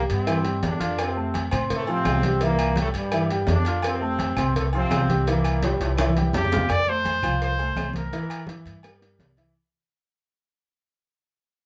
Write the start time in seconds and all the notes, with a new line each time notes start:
Already playing: G3 G4 G5
0.10 G2 C3 C4, cowbell, low agogo
0.27 E3 E4 E5, cowbell, high conga, low agogo, claves
0.44 G3 G4 G5, cowbell, high conga
0.62 F2 D3, cowbell, high conga, low timbale, low agogo
0.67 D4
0.80 F4 F5 F6, cowbell, high conga, low agogo
0.98 C3, cowbell, high conga, low agogo, claves
1.03 C4
1.16 A3 A4 A5, high conga
1.34 cowbell, high conga, low timbale, low agogo
1.51 A2 C4 C5 C6, cowbell, high conga, low conga, low agogo, claves
1.70 A2 A3, cowbell, high conga, low conga
1.87 C3 F3 C4 F4 F5, high conga, low agogo
2.05 C2, cowbell, high conga, low timbale, low agogo, claves
2.22 G3 G4 G5, cowbell, high conga
2.41 A#2 E3 A#3 E4 E5, cowbell, high conga, low agogo
2.59 cowbell, high conga, low agogo, claves
2.76 A2 G3 G4 G5, cowbell, high conga, low timbale
2.80 A3
2.94 G2 G3, cowbell, low agogo
3.12 E3 E4 E5, cowbell, high conga, low agogo, claves
3.30 G3 G4 G5, cowbell, high conga
3.47 F2 D3 D4, cowbell, high conga, low timbale, low agogo
3.65 F4 F5 F6, cowbell, low agogo
3.82 C3 C4, cowbell, high conga, low agogo, claves
4.01 A3 A4 A5, high conga
4.19 cowbell, high conga, low timbale, low agogo
4.37 C2 C4 C5 C6, cowbell, high conga, low conga, low agogo, claves
4.55 A2 A3, cowbell, high conga, low conga
4.73 C3 F3 C4 F4 F5, high conga, low agogo
4.91 C2, cowbell, high conga, low timbale, low agogo, claves
5.09 G3 G4 G5, cowbell, high conga
5.27 A#2 E3 A#3 E4 E5, cowbell, low agogo
5.44 cowbell, high conga, low agogo, claves
5.63 G2 G3 G4 G5, cowbell, high conga, high timbale
5.80 C2 E3 E4, cowbell, high timbale, low agogo
5.98 E3 E4 E5, cowbell, high bongo, high conga, high timbale, low agogo, claves
6.09 high conga
6.17 G3 G4 G5, cowbell
6.21 high conga
6.33 F2 G4, cowbell, low bongo, low conga, low timbale, low agogo
6.45 low conga
6.52 F4 F5 F6, cowbell, low bongo, low timbale, low agogo
6.57 low conga
6.69 F2 D5, cowbell, high conga, low agogo, claves
6.87 A3 A4 C5, high conga
7.05 cowbell, high conga, low timbale, low agogo
7.22 C2 F3 F4 F5, cowbell, high conga, low conga, low agogo, claves
7.42 C5, cowbell
7.59 A3 A4 C5, high conga, low agogo
7.76 C2 A3 A4 C5, cowbell, high conga, low timbale, low agogo, claves
7.94 A#4, cowbell, high conga
8.13 E3 E4 E5, cowbell, low agogo
8.29 cowbell, high conga, low agogo, claves
8.47 E3 E4 E5, cowbell, high conga, low timbale
8.65 G2, cowbell, low agogo
8.83 G3 G4 A#4, cowbell, high conga, low agogo, claves
9.02 G3 G4 A#4, cowbell, high conga
9.19 C2, cowbell, high conga, low timbale, low agogo
9.37 E3 E4 E5, cowbell, high conga, low agogo